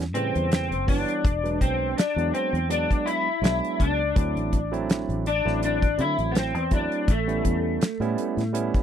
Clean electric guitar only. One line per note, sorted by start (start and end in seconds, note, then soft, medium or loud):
0.14 0.50 C4 medium
0.52 0.88 C4 medium
0.89 1.61 D4 medium
1.61 1.97 C4 medium
1.98 2.33 D4 medium
2.34 2.67 C4 medium
2.70 3.07 D4 loud
3.06 3.42 E4 loud
3.44 3.80 E4 medium
3.80 5.26 D4 medium
5.27 5.60 D4 medium
5.65 6.00 D4 loud
6.01 6.30 E4 medium
6.31 6.36 B3 medium
6.38 6.73 C4 medium
6.74 7.10 D4 medium
7.11 8.83 A3 medium